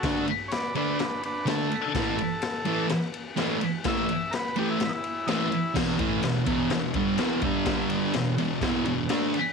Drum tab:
CC |--------|--------|--------|x-------|
RD |xxxxxxxx|xxxxxxxx|xxxxxxxx|-xxxxxxx|
SD |o-o-o-o-|o-o-o-o-|o-o-o-o-|o-o-o-o-|
BD |o-------|o-------|o-------|oo-o-o-o|

CC |--------|
RD |xxxxxxxx|
SD |o-o-o-o-|
BD |o---o---|